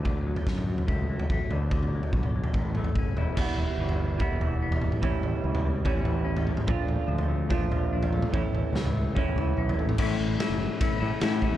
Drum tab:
CC |----------------|----------------|x---------------|----------------|
RD |----------------|----------------|----------------|----------------|
SD |----o-----------|----------------|----------------|----------------|
T2 |----o-----------|----o-----o-----|--------------oo|--------------oo|
FT |o--o-o-oo--o--o-|oo-o-o-oo--o--o-|o-o--o--o-o--o--|o-o--o--o-o--o--|
BD |o---o---o---o---|o---o---o---o---|o-------o-------|o-------o-------|

CC |----------------|----------------|x---------------|
RD |----------------|----------------|----b---b---b---|
SD |----------------|----o-----------|----o-------o---|
T2 |--------------oo|----o---------oo|----------------|
FT |o-o--o--o-o--o--|o-o--o--o-o--o--|----------------|
BD |o-------o-------|o-------o-------|o-------o-----o-|